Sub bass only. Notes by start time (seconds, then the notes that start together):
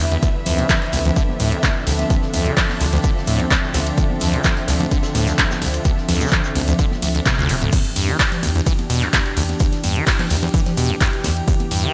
0.00 E2
0.46 D2
0.93 D2
1.40 D2
1.87 D2
2.34 D2
2.81 D2
3.27 D2
3.74 D2
4.21 D2
4.68 D2
5.15 D2
5.62 D2
6.09 D2
6.55 D2
7.02 D2
7.49 D1
7.96 E2
8.43 E2
8.90 E2
9.37 E2
9.84 E2
10.30 E2
10.77 E2
11.24 E2
11.71 E2